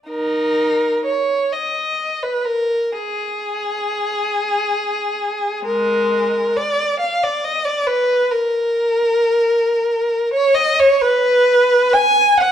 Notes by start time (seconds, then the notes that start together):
0.09 D#4 A#4
1.05 C#5
1.52 D#5
2.23 B4
2.45 A#4
2.93 G#4
5.66 G#3 A#4
6.56 D5
7.00 F5
7.23 D5
7.44 D#5
7.65 D5
7.87 B4
8.31 A#4
10.34 C#5
10.55 D#5
10.80 C#5
11.02 B4
11.93 G#5
12.38 F#5